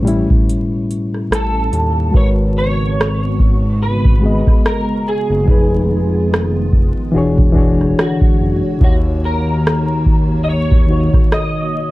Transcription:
0.00 0.26 A1 loud
0.00 0.03 A2 medium
0.00 1.48 A2 medium
0.00 0.05 G3 medium
0.00 0.07 C#4 medium
0.00 2.17 A4 medium
0.00 2.15 B4 medium
0.00 1.29 C#5 medium
0.05 1.49 G3 medium
0.05 1.50 C#4 medium
0.05 1.51 E4 medium
0.05 closed hi-hat medium
0.30 kick medium
0.49 closed hi-hat medium
0.91 closed hi-hat medium
1.14 cross-stick soft
1.31 1.70 A1 medium
1.31 cross-stick loud
1.31 closed hi-hat medium
1.35 2.16 A4 medium
1.72 2.12 D#2 medium
1.72 closed hi-hat medium
2.11 4.43 G#1 loud
2.11 5.44 C#3 medium
2.11 3.56 G#3 medium
2.11 5.44 G#3 medium
2.11 5.44 B3 medium
2.11 3.57 F#4 medium
2.11 5.44 F#4 medium
2.11 3.58 A#4 medium
2.11 kick medium
2.15 3.58 B4 medium
2.15 2.28 C#5 loud
2.15 3.59 C#5 medium
2.58 3.82 C#5 loud
3.01 cross-stick loud
3.39 kick medium
3.83 4.61 B4 medium
4.05 kick medium
4.20 5.30 G#3 medium
4.20 5.31 F#4 medium
4.20 5.32 G#4 medium
4.25 5.32 B3 medium
4.25 5.33 D#5 medium
4.47 kick medium
4.47 cross-stick soft
4.66 5.08 A#4 medium
4.66 cross-stick loud
5.08 6.70 G#4 medium
5.30 5.47 F#1 medium
5.46 6.93 F1 loud
5.46 7.12 D#3 medium
5.46 6.90 F3 medium
5.46 8.78 G#3 medium
5.46 7.12 B3 medium
5.46 6.91 D#4 medium
5.46 7.12 F4 medium
5.46 kick loud
5.50 6.92 G#4 medium
5.50 6.93 B4 medium
6.34 cross-stick loud
6.73 kick medium
7.12 7.94 E1 loud
7.12 8.79 D3 medium
7.12 7.49 E3 loud
7.12 7.50 D4 medium
7.12 11.91 F#4 medium
7.12 7.51 F#4 medium
7.12 11.91 C#5 medium
7.16 7.52 G#4 medium
7.16 7.52 C#5 loud
7.38 kick medium
7.52 8.63 E3 medium
7.52 8.64 D4 medium
7.52 8.65 F#4 medium
7.52 kick medium
7.57 8.65 G#4 medium
7.57 8.66 C#5 medium
7.81 cross-stick soft
7.99 8.78 F#4 medium
7.99 cross-stick loud
8.21 kick medium
8.40 8.63 F#1 medium
8.78 11.10 D#2 loud
8.78 10.23 D#3 medium
8.78 11.91 D#3 medium
8.78 11.91 A#3 medium
8.78 10.24 D#4 medium
8.78 10.25 F#4 medium
8.78 kick loud
8.84 8.95 F#4 medium
8.84 10.26 C#5 medium
9.25 10.43 A#4 loud
9.67 cross-stick loud
10.06 kick medium
10.44 10.49 D#5 medium
10.49 11.28 C#5 loud
10.72 kick medium
10.87 11.91 D#3 medium
10.87 11.91 D#4 medium
10.87 11.91 F#4 medium
10.92 11.91 C#5 medium
11.14 kick medium
11.14 cross-stick soft
11.32 11.91 D#5 medium
11.32 cross-stick loud

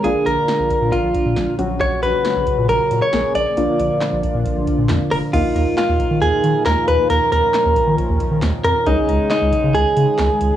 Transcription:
0.04 0.14 A#1 loud
0.04 5.30 A#2 medium
0.04 1.57 D3 medium
0.04 1.57 F3 medium
0.04 1.56 A#3 medium
0.04 1.57 D4 medium
0.04 1.56 D4 medium
0.04 1.57 F4 medium
0.04 1.56 F4 medium
0.04 0.27 G#4 loud
0.04 closed hi-hat medium
0.26 0.36 A#1 loud
0.26 0.94 A#4 loud
0.26 closed hi-hat medium
0.48 snare loud
0.48 closed hi-hat medium
0.59 0.69 A#1 medium
0.70 kick medium
0.70 closed hi-hat medium
0.82 0.91 A#2 loud
0.92 1.55 F4 medium
0.92 kick medium
0.92 closed hi-hat medium
1.04 1.13 A#1 loud
1.14 kick loud
1.14 closed hi-hat medium
1.26 1.35 A#2 loud
1.36 1.46 A#1 loud
1.36 snare loud
1.36 closed hi-hat medium
1.58 1.88 A#1 loud
1.58 3.55 C#3 medium
1.58 3.55 F#3 medium
1.58 3.10 F#3 medium
1.58 3.55 C#4 medium
1.58 3.10 C#4 medium
1.58 3.55 F#4 medium
1.58 3.10 F#4 medium
1.58 closed hi-hat medium
1.81 2.02 C#5 medium
1.81 kick loud
1.81 closed hi-hat medium
2.03 2.13 A#1 loud
2.03 2.69 B4 medium
2.03 closed hi-hat medium
2.25 snare loud
2.25 closed hi-hat medium
2.36 2.46 A#1 loud
2.47 kick loud
2.47 closed hi-hat medium
2.58 2.68 A#2 loud
2.69 2.79 A#1 loud
2.69 3.00 A#4 medium
2.69 closed hi-hat medium
2.91 3.01 A#2 loud
2.91 closed hi-hat medium
3.02 3.35 C#5 loud
3.13 3.23 A#1 loud
3.13 3.56 A#3 soft
3.13 3.57 C#4 soft
3.13 3.57 G#4 medium
3.13 snare loud
3.13 closed hi-hat medium
3.35 3.45 A#1 medium
3.35 4.86 D5 loud
3.35 closed hi-hat medium
3.57 3.67 A#1 loud
3.57 5.32 D3 medium
3.57 5.32 F3 medium
3.57 5.30 A#3 medium
3.57 5.32 D4 medium
3.57 5.30 D4 medium
3.57 5.32 F4 medium
3.57 5.30 F4 medium
3.57 closed hi-hat medium
3.79 3.89 A#1 loud
3.79 closed hi-hat medium
4.01 snare loud
4.01 clap medium
4.01 closed hi-hat medium
4.12 4.22 A#1 loud
4.23 kick loud
4.23 closed hi-hat medium
4.34 4.44 A#2 loud
4.45 kick medium
4.45 closed hi-hat medium
4.56 4.66 A#1 loud
4.67 kick loud
4.67 closed hi-hat medium
4.78 4.88 A#2 loud
4.89 4.99 F2 medium
4.89 snare loud
4.89 clap loud
4.89 closed hi-hat medium
5.11 5.21 F1 loud
5.11 5.17 A#4 medium
5.11 open hi-hat medium
5.33 5.43 D#2 loud
5.33 8.83 A#2 medium
5.33 10.56 D#3 medium
5.33 8.83 F3 medium
5.33 8.83 A#3 medium
5.33 7.08 D#4 medium
5.33 8.83 D#4 medium
5.33 5.76 F4 medium
5.33 8.83 F4 medium
5.33 kick loud
5.33 closed hi-hat medium
5.33 crash loud
5.56 5.65 D#2 loud
5.56 closed hi-hat medium
5.77 6.19 F4 medium
5.77 snare loud
5.77 clap medium
5.77 closed hi-hat medium
5.89 5.99 D#2 loud
6.00 kick loud
6.00 closed hi-hat medium
6.11 6.21 D#3 loud
6.22 6.32 D#2 loud
6.22 6.63 G#4 loud
6.22 closed hi-hat medium
6.44 6.54 D#3 loud
6.44 closed hi-hat medium
6.66 6.76 D#2 loud
6.66 6.88 A#4 loud
6.66 snare loud
6.66 clap medium
6.66 closed hi-hat medium
6.88 6.98 D#2 loud
6.88 7.10 B4 loud
6.88 closed hi-hat medium
7.10 7.20 D#2 loud
7.10 8.85 C#4 medium
7.10 7.31 A#4 loud
7.10 closed hi-hat medium
7.32 7.42 D#2 medium
7.32 7.94 A#4 loud
7.32 closed hi-hat medium
7.54 snare loud
7.54 clap medium
7.54 closed hi-hat medium
7.65 7.75 D#2 loud
7.76 kick loud
7.76 closed hi-hat medium
7.87 7.97 D#3 loud
7.98 kick medium
7.98 closed hi-hat medium
8.09 8.19 D#2 loud
8.20 kick medium
8.20 closed hi-hat medium
8.31 8.41 D#3 loud
8.42 8.52 D#2 medium
8.42 snare loud
8.42 clap loud
8.42 closed hi-hat medium
8.64 8.74 F2 medium
8.64 8.87 A#4 medium
8.64 closed hi-hat medium
8.86 8.96 C#2 loud
8.86 10.56 C#3 medium
8.86 10.56 G#3 medium
8.86 10.56 C#4 medium
8.86 9.29 D#4 medium
8.86 10.56 D#4 medium
8.86 10.56 G#4 medium
8.86 kick loud
8.86 closed hi-hat medium
9.09 9.18 C#2 loud
9.09 closed hi-hat medium
9.30 9.76 D#4 medium
9.30 snare loud
9.30 clap medium
9.30 closed hi-hat medium
9.42 9.51 C#2 loud
9.53 kick loud
9.53 closed hi-hat medium
9.64 9.74 C#3 loud
9.75 9.85 C#2 loud
9.75 10.56 G#4 loud
9.75 closed hi-hat medium
9.97 10.07 C#3 loud
9.97 closed hi-hat medium
10.19 10.29 C#2 loud
10.19 snare loud
10.19 clap loud
10.19 closed hi-hat medium
10.41 10.51 C#2 loud
10.41 closed hi-hat medium

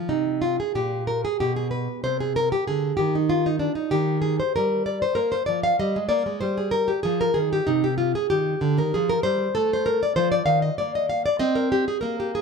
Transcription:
0.09 0.57 C3 medium
0.09 0.42 D#4 medium
0.42 0.59 F4 medium
0.60 0.75 G#4 medium
0.75 1.22 A#2 medium
0.75 1.07 G4 medium
1.07 1.24 A#4 medium
1.25 1.40 G#4 medium
1.40 1.87 B2 medium
1.40 1.56 G4 medium
1.56 1.70 G#4 medium
1.71 2.03 B4 medium
2.04 2.51 C3 medium
2.04 2.20 C5 medium
2.20 2.36 G#4 medium
2.36 2.52 A#4 medium
2.52 2.67 G4 medium
2.67 2.91 D3 medium
2.67 2.96 G#4 medium
2.97 3.67 D#3 medium
2.97 3.14 G4 medium
3.15 3.31 D#4 medium
3.30 3.46 F4 medium
3.46 3.59 D#4 medium
3.59 3.75 D4 medium
3.75 3.93 D#4 medium
3.91 4.38 D#3 medium
3.91 4.21 G4 medium
4.22 4.39 G#4 medium
4.40 4.55 C5 medium
4.56 5.02 G3 medium
4.56 4.86 A#4 medium
4.86 5.02 D5 medium
5.02 5.19 C5 medium
5.15 5.40 A#3 medium
5.15 5.33 A#4 medium
5.32 5.46 C5 medium
5.46 5.72 F3 medium
5.46 5.63 D5 medium
5.63 5.79 F5 medium
5.79 5.96 G3 medium
5.79 6.08 D#5 medium
5.96 6.12 G#3 medium
6.09 6.26 A#3 medium
6.09 6.40 D5 medium
6.26 6.43 G#3 medium
6.41 6.88 G3 medium
6.41 6.59 C5 medium
6.58 6.75 G#4 medium
6.71 6.90 A#4 medium
6.88 7.03 G4 medium
7.03 7.28 F3 medium
7.03 7.21 G#4 medium
7.21 7.38 A#4 medium
7.34 7.59 D#3 medium
7.34 7.52 G#4 medium
7.53 7.69 G4 medium
7.67 8.13 C3 medium
7.67 7.84 D#4 medium
7.84 7.97 G4 medium
7.98 8.15 F4 medium
8.15 8.30 G#4 medium
8.30 8.54 D#3 medium
8.30 8.76 G4 medium
8.61 8.77 D3 medium
8.78 8.93 D#3 medium
8.78 8.94 A#4 medium
8.94 9.17 F3 medium
8.94 9.10 G#4 medium
9.10 9.23 A#4 medium
9.23 9.47 G3 medium
9.23 9.54 C5 medium
9.55 9.99 A3 medium
9.55 9.70 A4 loud
9.73 9.87 C5 medium
9.86 10.01 A#4 medium
10.03 10.16 D5 medium
10.16 10.39 F3 medium
10.16 10.31 C5 medium
10.32 10.45 D5 medium
10.46 10.69 D#3 medium
10.46 10.62 F5 medium
10.62 10.78 D#5 medium
10.78 11.23 A#3 medium
10.78 10.93 D5 medium
10.95 11.09 D#5 medium
11.10 11.25 F5 medium
11.26 11.39 D5 medium
11.39 11.85 C4 medium
11.39 11.55 D#5 loud
11.55 11.71 A#4 medium
11.72 11.87 G4 medium
11.88 12.00 G#4 medium
12.01 12.41 A#3 medium
12.01 12.18 A#4 medium
12.20 12.35 G4 medium
12.35 12.41 G#4 medium

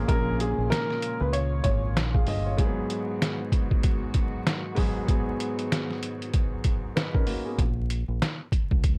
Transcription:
0.00 0.07 A#2 medium
0.00 2.55 C#3 medium
0.00 2.55 F3 medium
0.00 2.55 G#3 medium
0.00 0.08 A#3 medium
0.00 2.55 A#3 medium
0.00 0.09 C#4 medium
0.00 2.55 F4 medium
0.00 0.10 G#4 loud
0.07 0.53 A#1 loud
0.07 0.98 A#2 medium
0.07 0.98 A#3 medium
0.07 0.99 C#4 medium
0.07 0.99 G#4 medium
0.07 0.36 A#4 medium
0.07 kick loud
0.07 closed hi-hat medium
0.40 0.68 G#4 medium
0.40 closed hi-hat loud
0.58 0.70 A#1 medium
0.70 1.17 A#4 loud
0.70 snare loud
0.70 closed hi-hat loud
0.91 snare soft
1.02 closed hi-hat medium
1.21 1.60 C#2 medium
1.21 1.32 B4 medium
1.33 1.61 C#5 medium
1.33 closed hi-hat loud
1.64 1.96 G#1 medium
1.64 1.92 C#5 medium
1.64 kick medium
1.64 closed hi-hat medium
1.96 2.24 A#1 loud
1.96 snare loud
1.96 closed hi-hat medium
2.14 2.27 G#4 medium
2.14 2.26 F5 medium
2.14 kick medium
2.27 2.55 G1 loud
2.27 2.45 D#5 medium
2.27 open hi-hat medium
2.46 2.76 F4 medium
2.46 2.76 C#5 medium
2.57 3.48 G#2 medium
2.57 7.54 D#3 medium
2.57 3.48 F#3 medium
2.57 7.54 F#3 medium
2.57 7.54 G#3 medium
2.57 2.66 A#3 medium
2.57 7.54 B3 medium
2.57 7.54 F#4 medium
2.57 3.49 G#4 loud
2.57 kick loud
2.57 closed hi-hat loud
2.65 3.52 B3 medium
2.90 closed hi-hat medium
3.22 snare loud
3.22 closed hi-hat loud
3.52 kick loud
3.52 closed hi-hat medium
3.71 kick loud
3.83 kick loud
3.83 closed hi-hat loud
4.14 kick loud
4.14 closed hi-hat medium
4.47 snare loud
4.47 closed hi-hat medium
4.75 5.00 G#2 medium
4.75 5.01 F#3 medium
4.75 5.01 B3 medium
4.75 5.01 G#4 loud
4.75 kick medium
4.75 open hi-hat soft
5.07 5.97 G#2 medium
5.07 5.98 F#3 medium
5.07 5.98 B3 medium
5.07 5.99 G#4 loud
5.07 kick loud
5.07 closed hi-hat loud
5.40 closed hi-hat medium
5.59 closed hi-hat medium
5.72 snare loud
5.72 closed hi-hat loud
5.91 snare soft
6.03 closed hi-hat medium
6.22 closed hi-hat medium
6.34 kick loud
6.34 closed hi-hat loud
6.64 kick loud
6.64 closed hi-hat medium
6.96 7.14 D#4 medium
6.96 7.14 B4 medium
6.96 snare loud
6.96 closed hi-hat medium
7.15 7.27 C#4 medium
7.15 7.27 A#4 medium
7.15 kick medium
7.26 7.45 A#3 medium
7.26 7.44 F#4 medium
7.26 open hi-hat medium
7.45 7.58 B3 medium
7.45 7.58 G#4 medium
7.58 8.03 A#1 loud
7.58 kick loud
7.58 closed hi-hat medium
7.90 closed hi-hat medium
8.08 8.20 A#1 medium
8.22 snare loud
8.22 closed hi-hat loud
8.52 kick medium
8.52 closed hi-hat medium
8.71 8.98 C#2 medium
8.71 kick loud
8.84 kick loud
8.84 closed hi-hat medium

